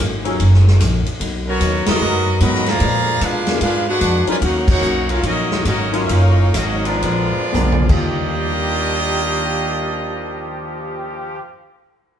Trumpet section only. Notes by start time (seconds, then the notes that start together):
1.48 B3 F#4 A#4 C#5
1.88 B3 F#4 A#4 D#5
2.42 F#4 A#4 D#5 B5
2.68 G#4 D5 F5 A#5
3.22 D4 G#4 B4 F5
3.62 D4 G#4 B4 F5
3.88 D4 G#4 B4 F#5
4.30 F4 B4 D5 G#5
4.44 D#4 A#4 C#5 F#5
4.70 D#4 A#4 C#5 F#5
5.10 C#4 F#4 A#4 F5
5.25 C#4 F#4 A#4 D#5
5.67 C#4 F#4 A#4 D#5
6.04 E5
6.10 D#4 A#4 C#5 F5
6.56 C#4 F#4 A#4 D#5
6.86 B3 F4 G#4 D5
7.90 A#3 F4 G4 D#5